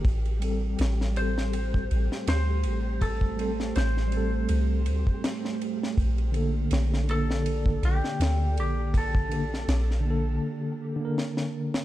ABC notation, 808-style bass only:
X:1
M:4/4
L:1/8
Q:"Swing 16ths" 1/4=81
K:Aphr
V:1 name="808-style bass" clef=bass
A,,,2 A,,,3 A,,, D,, A,,,- | A,,,2 A,,,2 C,, D,, z2 | B,,,2 B,,,3 B,,, D,, B,,,- | B,,,2 B,,,2 z4 |]